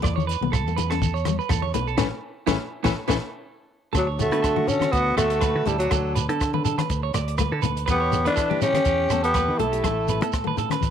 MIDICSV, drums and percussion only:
0, 0, Header, 1, 3, 480
1, 0, Start_track
1, 0, Key_signature, 2, "major"
1, 0, Tempo, 490597
1, 26, Time_signature, 4, 2, 24, 8
1, 10667, End_track
2, 0, Start_track
2, 0, Title_t, "Shekere"
2, 54, Note_on_c, 9, 82, 81
2, 152, Note_off_c, 9, 82, 0
2, 191, Note_on_c, 9, 82, 25
2, 289, Note_off_c, 9, 82, 0
2, 304, Note_on_c, 9, 82, 66
2, 402, Note_off_c, 9, 82, 0
2, 529, Note_on_c, 9, 82, 79
2, 627, Note_off_c, 9, 82, 0
2, 657, Note_on_c, 9, 82, 24
2, 754, Note_off_c, 9, 82, 0
2, 768, Note_on_c, 9, 82, 65
2, 866, Note_off_c, 9, 82, 0
2, 897, Note_on_c, 9, 82, 26
2, 994, Note_off_c, 9, 82, 0
2, 1004, Note_on_c, 9, 82, 84
2, 1102, Note_off_c, 9, 82, 0
2, 1136, Note_on_c, 9, 82, 25
2, 1234, Note_off_c, 9, 82, 0
2, 1245, Note_on_c, 9, 82, 68
2, 1342, Note_off_c, 9, 82, 0
2, 1372, Note_on_c, 9, 82, 27
2, 1470, Note_off_c, 9, 82, 0
2, 1483, Note_on_c, 9, 82, 84
2, 1581, Note_off_c, 9, 82, 0
2, 1710, Note_on_c, 9, 82, 64
2, 1808, Note_off_c, 9, 82, 0
2, 1834, Note_on_c, 9, 82, 24
2, 1931, Note_off_c, 9, 82, 0
2, 1945, Note_on_c, 9, 82, 93
2, 2043, Note_off_c, 9, 82, 0
2, 2425, Note_on_c, 9, 82, 89
2, 2523, Note_off_c, 9, 82, 0
2, 2790, Note_on_c, 9, 82, 102
2, 2888, Note_off_c, 9, 82, 0
2, 3034, Note_on_c, 9, 82, 96
2, 3132, Note_off_c, 9, 82, 0
2, 3866, Note_on_c, 9, 82, 67
2, 3964, Note_off_c, 9, 82, 0
2, 4107, Note_on_c, 9, 82, 91
2, 4205, Note_off_c, 9, 82, 0
2, 4346, Note_on_c, 9, 82, 62
2, 4444, Note_off_c, 9, 82, 0
2, 4588, Note_on_c, 9, 82, 90
2, 4686, Note_off_c, 9, 82, 0
2, 4722, Note_on_c, 9, 82, 27
2, 4820, Note_off_c, 9, 82, 0
2, 4839, Note_on_c, 9, 82, 68
2, 4937, Note_off_c, 9, 82, 0
2, 5071, Note_on_c, 9, 82, 94
2, 5169, Note_off_c, 9, 82, 0
2, 5206, Note_on_c, 9, 82, 28
2, 5304, Note_off_c, 9, 82, 0
2, 5307, Note_on_c, 9, 82, 76
2, 5405, Note_off_c, 9, 82, 0
2, 5555, Note_on_c, 9, 82, 92
2, 5652, Note_off_c, 9, 82, 0
2, 5687, Note_on_c, 9, 82, 30
2, 5785, Note_off_c, 9, 82, 0
2, 5795, Note_on_c, 9, 82, 72
2, 5892, Note_off_c, 9, 82, 0
2, 6033, Note_on_c, 9, 82, 103
2, 6131, Note_off_c, 9, 82, 0
2, 6268, Note_on_c, 9, 82, 70
2, 6366, Note_off_c, 9, 82, 0
2, 6509, Note_on_c, 9, 82, 103
2, 6607, Note_off_c, 9, 82, 0
2, 6640, Note_on_c, 9, 82, 29
2, 6737, Note_off_c, 9, 82, 0
2, 6756, Note_on_c, 9, 82, 70
2, 6853, Note_off_c, 9, 82, 0
2, 6990, Note_on_c, 9, 82, 95
2, 7088, Note_off_c, 9, 82, 0
2, 7223, Note_on_c, 9, 82, 73
2, 7320, Note_off_c, 9, 82, 0
2, 7461, Note_on_c, 9, 82, 98
2, 7559, Note_off_c, 9, 82, 0
2, 7596, Note_on_c, 9, 82, 28
2, 7693, Note_off_c, 9, 82, 0
2, 7709, Note_on_c, 9, 82, 64
2, 7807, Note_off_c, 9, 82, 0
2, 7947, Note_on_c, 9, 82, 97
2, 8045, Note_off_c, 9, 82, 0
2, 8182, Note_on_c, 9, 82, 65
2, 8280, Note_off_c, 9, 82, 0
2, 8428, Note_on_c, 9, 82, 89
2, 8526, Note_off_c, 9, 82, 0
2, 8556, Note_on_c, 9, 82, 26
2, 8654, Note_off_c, 9, 82, 0
2, 8661, Note_on_c, 9, 82, 62
2, 8758, Note_off_c, 9, 82, 0
2, 8901, Note_on_c, 9, 82, 82
2, 8998, Note_off_c, 9, 82, 0
2, 9038, Note_on_c, 9, 82, 23
2, 9136, Note_off_c, 9, 82, 0
2, 9157, Note_on_c, 9, 82, 58
2, 9255, Note_off_c, 9, 82, 0
2, 9522, Note_on_c, 9, 82, 22
2, 9620, Note_off_c, 9, 82, 0
2, 9633, Note_on_c, 9, 82, 52
2, 9730, Note_off_c, 9, 82, 0
2, 9866, Note_on_c, 9, 82, 78
2, 9964, Note_off_c, 9, 82, 0
2, 10004, Note_on_c, 9, 82, 22
2, 10101, Note_off_c, 9, 82, 0
2, 10101, Note_on_c, 9, 82, 57
2, 10199, Note_off_c, 9, 82, 0
2, 10347, Note_on_c, 9, 82, 80
2, 10445, Note_off_c, 9, 82, 0
2, 10592, Note_on_c, 9, 82, 55
2, 10667, Note_off_c, 9, 82, 0
2, 10667, End_track
3, 0, Start_track
3, 0, Title_t, "Drums"
3, 41, Note_on_c, 9, 36, 87
3, 41, Note_on_c, 9, 37, 66
3, 139, Note_off_c, 9, 36, 0
3, 139, Note_off_c, 9, 37, 0
3, 172, Note_on_c, 9, 63, 78
3, 270, Note_off_c, 9, 63, 0
3, 284, Note_on_c, 9, 42, 44
3, 382, Note_off_c, 9, 42, 0
3, 416, Note_on_c, 9, 63, 70
3, 514, Note_off_c, 9, 63, 0
3, 520, Note_on_c, 9, 36, 86
3, 521, Note_on_c, 9, 37, 67
3, 618, Note_off_c, 9, 36, 0
3, 618, Note_off_c, 9, 37, 0
3, 759, Note_on_c, 9, 42, 48
3, 765, Note_on_c, 9, 64, 69
3, 857, Note_off_c, 9, 42, 0
3, 862, Note_off_c, 9, 64, 0
3, 887, Note_on_c, 9, 37, 64
3, 984, Note_off_c, 9, 37, 0
3, 996, Note_on_c, 9, 36, 83
3, 996, Note_on_c, 9, 63, 72
3, 1093, Note_off_c, 9, 36, 0
3, 1093, Note_off_c, 9, 63, 0
3, 1226, Note_on_c, 9, 37, 62
3, 1226, Note_on_c, 9, 42, 46
3, 1227, Note_on_c, 9, 63, 75
3, 1324, Note_off_c, 9, 37, 0
3, 1324, Note_off_c, 9, 42, 0
3, 1325, Note_off_c, 9, 63, 0
3, 1461, Note_on_c, 9, 64, 61
3, 1462, Note_on_c, 9, 37, 67
3, 1470, Note_on_c, 9, 36, 91
3, 1559, Note_off_c, 9, 37, 0
3, 1559, Note_off_c, 9, 64, 0
3, 1568, Note_off_c, 9, 36, 0
3, 1592, Note_on_c, 9, 63, 66
3, 1690, Note_off_c, 9, 63, 0
3, 1703, Note_on_c, 9, 42, 53
3, 1714, Note_on_c, 9, 64, 73
3, 1801, Note_off_c, 9, 42, 0
3, 1811, Note_off_c, 9, 64, 0
3, 1935, Note_on_c, 9, 38, 68
3, 1945, Note_on_c, 9, 36, 67
3, 1956, Note_on_c, 9, 64, 92
3, 2033, Note_off_c, 9, 38, 0
3, 2043, Note_off_c, 9, 36, 0
3, 2054, Note_off_c, 9, 64, 0
3, 2420, Note_on_c, 9, 38, 72
3, 2420, Note_on_c, 9, 64, 91
3, 2424, Note_on_c, 9, 36, 66
3, 2518, Note_off_c, 9, 38, 0
3, 2518, Note_off_c, 9, 64, 0
3, 2521, Note_off_c, 9, 36, 0
3, 2785, Note_on_c, 9, 38, 66
3, 2790, Note_on_c, 9, 36, 70
3, 2792, Note_on_c, 9, 64, 89
3, 2883, Note_off_c, 9, 38, 0
3, 2888, Note_off_c, 9, 36, 0
3, 2890, Note_off_c, 9, 64, 0
3, 3021, Note_on_c, 9, 64, 98
3, 3030, Note_on_c, 9, 36, 75
3, 3030, Note_on_c, 9, 38, 74
3, 3119, Note_off_c, 9, 64, 0
3, 3128, Note_off_c, 9, 36, 0
3, 3128, Note_off_c, 9, 38, 0
3, 3845, Note_on_c, 9, 64, 59
3, 3861, Note_on_c, 9, 36, 84
3, 3863, Note_on_c, 9, 37, 64
3, 3863, Note_on_c, 9, 42, 45
3, 3943, Note_off_c, 9, 64, 0
3, 3959, Note_off_c, 9, 36, 0
3, 3961, Note_off_c, 9, 37, 0
3, 3961, Note_off_c, 9, 42, 0
3, 4100, Note_on_c, 9, 64, 72
3, 4104, Note_on_c, 9, 42, 40
3, 4198, Note_off_c, 9, 64, 0
3, 4202, Note_off_c, 9, 42, 0
3, 4234, Note_on_c, 9, 42, 43
3, 4332, Note_off_c, 9, 42, 0
3, 4344, Note_on_c, 9, 36, 77
3, 4344, Note_on_c, 9, 37, 62
3, 4344, Note_on_c, 9, 42, 45
3, 4441, Note_off_c, 9, 37, 0
3, 4441, Note_off_c, 9, 42, 0
3, 4442, Note_off_c, 9, 36, 0
3, 4469, Note_on_c, 9, 63, 74
3, 4567, Note_off_c, 9, 63, 0
3, 4575, Note_on_c, 9, 64, 70
3, 4583, Note_on_c, 9, 42, 48
3, 4672, Note_off_c, 9, 64, 0
3, 4681, Note_off_c, 9, 42, 0
3, 4703, Note_on_c, 9, 63, 73
3, 4714, Note_on_c, 9, 37, 63
3, 4714, Note_on_c, 9, 42, 44
3, 4801, Note_off_c, 9, 63, 0
3, 4812, Note_off_c, 9, 37, 0
3, 4812, Note_off_c, 9, 42, 0
3, 4821, Note_on_c, 9, 42, 47
3, 4824, Note_on_c, 9, 36, 82
3, 4919, Note_off_c, 9, 42, 0
3, 4922, Note_off_c, 9, 36, 0
3, 5064, Note_on_c, 9, 37, 64
3, 5064, Note_on_c, 9, 42, 44
3, 5162, Note_off_c, 9, 37, 0
3, 5162, Note_off_c, 9, 42, 0
3, 5188, Note_on_c, 9, 42, 51
3, 5286, Note_off_c, 9, 42, 0
3, 5297, Note_on_c, 9, 37, 63
3, 5297, Note_on_c, 9, 42, 50
3, 5304, Note_on_c, 9, 36, 89
3, 5395, Note_off_c, 9, 37, 0
3, 5395, Note_off_c, 9, 42, 0
3, 5402, Note_off_c, 9, 36, 0
3, 5542, Note_on_c, 9, 42, 49
3, 5551, Note_on_c, 9, 64, 70
3, 5640, Note_off_c, 9, 42, 0
3, 5649, Note_off_c, 9, 64, 0
3, 5674, Note_on_c, 9, 42, 52
3, 5772, Note_off_c, 9, 42, 0
3, 5782, Note_on_c, 9, 37, 65
3, 5782, Note_on_c, 9, 42, 48
3, 5789, Note_on_c, 9, 36, 85
3, 5791, Note_on_c, 9, 64, 57
3, 5879, Note_off_c, 9, 37, 0
3, 5879, Note_off_c, 9, 42, 0
3, 5886, Note_off_c, 9, 36, 0
3, 5889, Note_off_c, 9, 64, 0
3, 6025, Note_on_c, 9, 42, 49
3, 6033, Note_on_c, 9, 64, 67
3, 6123, Note_off_c, 9, 42, 0
3, 6131, Note_off_c, 9, 64, 0
3, 6159, Note_on_c, 9, 42, 47
3, 6257, Note_off_c, 9, 42, 0
3, 6272, Note_on_c, 9, 36, 76
3, 6274, Note_on_c, 9, 37, 68
3, 6274, Note_on_c, 9, 42, 49
3, 6370, Note_off_c, 9, 36, 0
3, 6372, Note_off_c, 9, 37, 0
3, 6372, Note_off_c, 9, 42, 0
3, 6397, Note_on_c, 9, 63, 75
3, 6495, Note_off_c, 9, 63, 0
3, 6507, Note_on_c, 9, 64, 73
3, 6515, Note_on_c, 9, 42, 53
3, 6605, Note_off_c, 9, 64, 0
3, 6613, Note_off_c, 9, 42, 0
3, 6635, Note_on_c, 9, 63, 74
3, 6640, Note_on_c, 9, 37, 59
3, 6640, Note_on_c, 9, 42, 46
3, 6733, Note_off_c, 9, 63, 0
3, 6738, Note_off_c, 9, 37, 0
3, 6738, Note_off_c, 9, 42, 0
3, 6748, Note_on_c, 9, 42, 47
3, 6750, Note_on_c, 9, 36, 83
3, 6845, Note_off_c, 9, 42, 0
3, 6848, Note_off_c, 9, 36, 0
3, 6989, Note_on_c, 9, 37, 64
3, 6989, Note_on_c, 9, 42, 48
3, 7087, Note_off_c, 9, 37, 0
3, 7087, Note_off_c, 9, 42, 0
3, 7122, Note_on_c, 9, 42, 50
3, 7220, Note_off_c, 9, 42, 0
3, 7223, Note_on_c, 9, 37, 66
3, 7223, Note_on_c, 9, 42, 48
3, 7230, Note_on_c, 9, 36, 78
3, 7321, Note_off_c, 9, 37, 0
3, 7321, Note_off_c, 9, 42, 0
3, 7328, Note_off_c, 9, 36, 0
3, 7468, Note_on_c, 9, 64, 80
3, 7471, Note_on_c, 9, 42, 47
3, 7566, Note_off_c, 9, 64, 0
3, 7569, Note_off_c, 9, 42, 0
3, 7603, Note_on_c, 9, 42, 47
3, 7700, Note_off_c, 9, 42, 0
3, 7704, Note_on_c, 9, 64, 69
3, 7707, Note_on_c, 9, 37, 68
3, 7707, Note_on_c, 9, 42, 43
3, 7709, Note_on_c, 9, 36, 88
3, 7802, Note_off_c, 9, 64, 0
3, 7804, Note_off_c, 9, 37, 0
3, 7804, Note_off_c, 9, 42, 0
3, 7807, Note_off_c, 9, 36, 0
3, 7945, Note_on_c, 9, 64, 71
3, 7952, Note_on_c, 9, 42, 45
3, 8043, Note_off_c, 9, 64, 0
3, 8049, Note_off_c, 9, 42, 0
3, 8082, Note_on_c, 9, 42, 45
3, 8180, Note_off_c, 9, 42, 0
3, 8191, Note_on_c, 9, 36, 83
3, 8194, Note_on_c, 9, 37, 61
3, 8194, Note_on_c, 9, 42, 46
3, 8289, Note_off_c, 9, 36, 0
3, 8292, Note_off_c, 9, 37, 0
3, 8292, Note_off_c, 9, 42, 0
3, 8324, Note_on_c, 9, 63, 73
3, 8422, Note_off_c, 9, 63, 0
3, 8429, Note_on_c, 9, 64, 76
3, 8431, Note_on_c, 9, 42, 47
3, 8527, Note_off_c, 9, 64, 0
3, 8529, Note_off_c, 9, 42, 0
3, 8547, Note_on_c, 9, 63, 74
3, 8557, Note_on_c, 9, 37, 64
3, 8557, Note_on_c, 9, 42, 46
3, 8645, Note_off_c, 9, 63, 0
3, 8655, Note_off_c, 9, 37, 0
3, 8655, Note_off_c, 9, 42, 0
3, 8660, Note_on_c, 9, 42, 46
3, 8666, Note_on_c, 9, 36, 87
3, 8757, Note_off_c, 9, 42, 0
3, 8764, Note_off_c, 9, 36, 0
3, 8905, Note_on_c, 9, 37, 58
3, 8905, Note_on_c, 9, 42, 43
3, 9003, Note_off_c, 9, 37, 0
3, 9003, Note_off_c, 9, 42, 0
3, 9039, Note_on_c, 9, 42, 52
3, 9137, Note_off_c, 9, 42, 0
3, 9140, Note_on_c, 9, 37, 64
3, 9140, Note_on_c, 9, 42, 48
3, 9146, Note_on_c, 9, 36, 89
3, 9237, Note_off_c, 9, 37, 0
3, 9237, Note_off_c, 9, 42, 0
3, 9244, Note_off_c, 9, 36, 0
3, 9386, Note_on_c, 9, 64, 76
3, 9388, Note_on_c, 9, 42, 49
3, 9484, Note_off_c, 9, 64, 0
3, 9485, Note_off_c, 9, 42, 0
3, 9520, Note_on_c, 9, 42, 51
3, 9618, Note_off_c, 9, 42, 0
3, 9626, Note_on_c, 9, 64, 67
3, 9630, Note_on_c, 9, 36, 81
3, 9630, Note_on_c, 9, 37, 61
3, 9630, Note_on_c, 9, 42, 50
3, 9724, Note_off_c, 9, 64, 0
3, 9727, Note_off_c, 9, 36, 0
3, 9728, Note_off_c, 9, 37, 0
3, 9728, Note_off_c, 9, 42, 0
3, 9866, Note_on_c, 9, 64, 70
3, 9867, Note_on_c, 9, 42, 49
3, 9964, Note_off_c, 9, 64, 0
3, 9965, Note_off_c, 9, 42, 0
3, 10001, Note_on_c, 9, 42, 51
3, 10099, Note_off_c, 9, 42, 0
3, 10111, Note_on_c, 9, 36, 81
3, 10112, Note_on_c, 9, 37, 64
3, 10112, Note_on_c, 9, 42, 46
3, 10209, Note_off_c, 9, 36, 0
3, 10210, Note_off_c, 9, 37, 0
3, 10210, Note_off_c, 9, 42, 0
3, 10241, Note_on_c, 9, 63, 70
3, 10339, Note_off_c, 9, 63, 0
3, 10344, Note_on_c, 9, 64, 64
3, 10354, Note_on_c, 9, 42, 53
3, 10442, Note_off_c, 9, 64, 0
3, 10452, Note_off_c, 9, 42, 0
3, 10468, Note_on_c, 9, 63, 68
3, 10480, Note_on_c, 9, 37, 64
3, 10480, Note_on_c, 9, 42, 48
3, 10566, Note_off_c, 9, 63, 0
3, 10574, Note_on_c, 9, 63, 63
3, 10578, Note_off_c, 9, 37, 0
3, 10578, Note_off_c, 9, 42, 0
3, 10593, Note_on_c, 9, 36, 87
3, 10596, Note_on_c, 9, 42, 46
3, 10667, Note_off_c, 9, 36, 0
3, 10667, Note_off_c, 9, 42, 0
3, 10667, Note_off_c, 9, 63, 0
3, 10667, End_track
0, 0, End_of_file